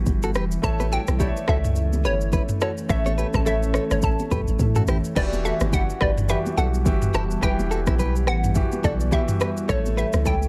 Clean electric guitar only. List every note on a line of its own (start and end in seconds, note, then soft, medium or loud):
0.24 0.30 F#4 medium
0.24 0.30 A4 medium
0.35 0.44 G4 medium
0.35 0.44 B4 medium
0.80 0.87 G4 medium
0.80 0.86 B4 medium
0.92 1.01 F#4 medium
0.92 1.00 A4 medium
1.20 1.29 E4 medium
1.20 1.29 G4 medium
1.48 1.57 F#4 medium
1.48 1.57 A4 medium
2.05 2.14 G4 medium
2.05 2.14 B4 medium
2.33 2.42 E4 medium
2.33 2.42 B4 medium
2.62 2.71 F#4 medium
2.62 2.70 A4 medium
3.06 3.13 A4 medium
3.06 3.12 C#5 medium
3.18 3.27 G4 medium
3.18 3.26 B4 medium
3.46 3.55 E4 medium
3.46 3.55 A4 medium
3.75 3.84 A4 medium
3.75 3.83 C#5 medium
4.32 4.41 G4 medium
4.32 4.40 B4 medium
4.76 4.83 F#4 medium
4.76 4.82 A4 medium
4.88 4.97 E4 medium
4.88 4.97 G4 medium
5.17 5.26 G4 medium
5.17 5.25 B4 loud
5.45 5.54 F#4 medium
5.45 5.53 A4 medium
5.73 5.82 E4 medium
5.73 5.82 G4 medium
6.01 6.10 G4 medium
6.01 6.10 B4 medium
6.30 6.39 G4 medium
6.30 6.38 B4 medium
6.58 6.67 F#4 medium
6.58 6.66 A4 medium
7.14 7.23 E4 medium
7.14 7.23 G4 medium
7.43 7.52 G4 medium
7.43 7.51 B4 medium
7.71 7.80 F#4 medium
7.71 7.80 A4 medium
7.88 7.94 E4 medium
7.88 7.94 G4 medium
7.99 8.15 G4 medium
7.99 8.14 B4 medium
8.84 8.93 F#4 medium
8.84 8.93 A4 medium
9.12 9.22 E4 medium
9.12 9.21 G4 medium
9.41 9.50 G4 medium
9.41 9.49 B4 medium
9.69 9.78 A4 medium
9.69 9.78 C#5 loud
9.97 10.06 G4 medium
9.97 10.06 B4 medium
10.26 10.35 E4 medium
10.26 10.34 A4 medium